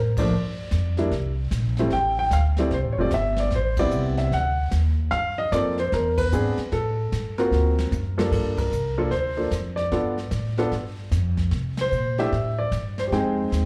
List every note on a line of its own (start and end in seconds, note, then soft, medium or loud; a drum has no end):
0.00 0.30 A2 medium
0.17 0.31 F3 medium
0.17 0.31 A3 medium
0.17 0.31 A#3 medium
0.17 0.31 D4 medium
0.17 0.94 D5 medium
0.17 kick medium
0.17 ride medium
0.31 0.70 G2 medium
0.31 brush sweep medium
0.71 1.10 F2 medium
0.71 snare medium
0.71 hi-hat pedal medium
0.97 1.11 G3 medium
0.97 1.11 A#3 medium
0.97 1.11 D4 medium
0.97 1.11 E4 medium
0.97 snare soft
1.11 1.50 C2 medium
1.11 brush sweep soft
1.11 snare soft
1.51 1.90 A#1 medium
1.51 snare medium
1.51 hi-hat pedal soft
1.77 1.91 G3 medium
1.77 1.91 A3 medium
1.77 1.91 C4 medium
1.77 1.92 E4 medium
1.77 snare soft
1.90 2.30 A1 medium
1.90 2.16 G5 loud
1.90 brush sweep soft
1.90 snare soft
2.19 2.32 G5 medium
2.30 2.70 D2 medium
2.30 2.39 F5 medium
2.30 snare medium
2.30 hi-hat pedal soft
2.57 2.71 G3 medium
2.57 2.71 A3 medium
2.57 2.71 C4 medium
2.57 2.71 E4 medium
2.57 2.73 D5 medium
2.57 snare soft
2.70 2.84 C2 medium
2.70 2.79 C5 medium
2.70 brush sweep soft
2.70 snare soft
2.84 2.97 A1 medium
2.93 2.98 C#5 medium
2.97 3.10 F1 medium
2.97 3.11 G3 medium
2.97 3.11 A3 medium
2.97 3.11 C4 medium
2.97 3.11 F4 medium
2.97 3.14 D5 medium
3.11 3.51 G1 medium
3.11 3.40 E5 medium
3.11 snare medium
3.11 hi-hat pedal medium
3.37 3.52 D5 medium
3.37 snare soft
3.50 3.90 A1 medium
3.50 brush sweep soft
3.50 snare soft
3.55 3.78 C5 medium
3.77 4.30 G3 medium
3.77 4.30 B3 medium
3.77 4.30 C4 medium
3.77 4.30 E4 medium
3.77 4.16 D5 loud
3.77 kick medium
3.77 ride medium
3.91 4.30 C2 medium
3.91 hi-hat pedal medium
4.17 4.33 E5 medium
4.17 snare soft
4.31 4.71 D2 medium
4.31 4.70 F#5 medium
4.31 brush sweep soft
4.31 snare soft
4.71 5.11 D#2 loud
4.71 snare medium
4.71 hi-hat pedal medium
5.11 5.51 G2 medium
5.11 5.38 F5 loud
5.11 brush sweep medium
5.11 snare soft
5.38 5.51 D#5 medium
5.52 5.91 F2 medium
5.52 5.76 A#3 medium
5.52 5.76 C4 medium
5.52 5.76 F4 soft
5.52 5.77 A4 medium
5.52 5.76 D5 loud
5.52 snare medium
5.52 hi-hat pedal medium
5.78 5.92 C5 medium
5.78 snare soft
5.92 6.31 E2 medium
5.92 6.17 A#4 medium
5.92 brush sweep soft
5.92 snare soft
6.18 6.74 B4 medium
6.18 kick medium
6.18 ride medium
6.32 6.56 G#2 medium
6.32 6.56 B3 medium
6.32 6.56 C4 medium
6.32 6.56 D4 medium
6.32 6.56 G#4 medium
6.32 hi-hat pedal medium
6.57 muted upright bass stroke soft
6.57 snare soft
6.72 7.11 A2 medium
6.72 7.40 A4 medium
6.72 brush sweep soft
6.72 snare soft
7.12 7.50 G2 medium
7.12 snare medium
7.12 hi-hat pedal medium
7.38 7.90 A#3 medium
7.38 7.90 C4 medium
7.38 7.90 F4 medium
7.38 7.90 F#4 medium
7.38 8.14 A#4 medium
7.38 snare soft
7.51 7.90 D2 medium
7.51 snare soft
7.79 snare medium
7.91 8.31 F#2 medium
7.91 hi-hat pedal medium
7.91 high tom medium
8.18 8.69 G2 medium
8.18 8.69 A#3 medium
8.18 8.69 D4 medium
8.18 8.69 F4 medium
8.18 8.31 A4 medium
8.18 snare medium
8.31 8.70 G2 medium
8.31 8.56 A4 medium
8.31 brush sweep medium
8.31 kick medium
8.31 snare soft
8.31 crash medium
8.58 9.14 A#4 medium
8.58 kick medium
8.58 ride medium
8.71 9.10 C2 medium
8.71 hi-hat pedal medium
8.98 9.11 A#3 medium
8.98 9.11 D4 medium
8.98 9.11 F4 medium
8.98 9.11 A4 medium
9.11 9.50 D2 medium
9.11 9.49 C5 medium
9.11 brush sweep soft
9.11 snare soft
9.37 9.50 A#3 soft
9.37 9.50 D4 soft
9.37 9.51 F4 soft
9.37 9.50 A4 medium
9.51 9.91 F2 medium
9.51 snare medium
9.51 hi-hat pedal medium
9.76 10.53 D5 medium
9.76 snare soft
9.92 10.31 G2 medium
9.92 10.15 B3 medium
9.92 10.15 D4 medium
9.92 10.16 F4 medium
9.92 10.16 A4 medium
9.92 brush sweep soft
9.92 snare soft
10.18 snare soft
10.31 10.71 A2 medium
10.31 snare medium
10.31 hi-hat pedal medium
10.58 10.71 B3 medium
10.58 10.71 D4 medium
10.58 10.71 F4 medium
10.58 10.71 A4 medium
10.58 snare soft
10.71 11.11 G2 medium
10.71 brush sweep soft
10.71 snare soft
11.11 11.51 F2 medium
11.11 snare soft
11.11 hi-hat pedal medium
11.37 kick soft
11.37 snare soft
11.51 11.91 C3 medium
11.51 brush sweep soft
11.51 snare soft
11.77 12.17 C5 loud
11.77 snare medium
11.77 ride medium
11.92 12.31 A#2 medium
11.92 hi-hat pedal soft
12.18 12.31 A3 medium
12.18 12.31 D4 medium
12.18 12.31 E4 medium
12.18 12.31 G4 medium
12.18 12.60 E5 medium
12.18 snare soft
12.32 12.71 A2 medium
12.32 brush sweep soft
12.32 snare soft
12.59 13.00 D5 medium
12.71 13.11 G2 medium
12.71 snare medium
12.71 hi-hat pedal soft
12.98 13.03 C5 medium
12.98 snare soft
13.07 13.51 F2 medium
13.07 13.12 G4 soft
13.12 13.65 G#3 medium
13.12 13.65 C4 medium
13.12 13.65 D#4 medium
13.12 13.65 G#4 medium
13.12 13.65 G5 medium
13.12 brush sweep soft
13.12 snare soft
13.52 13.65 D#2 medium
13.52 snare medium
13.52 hi-hat pedal soft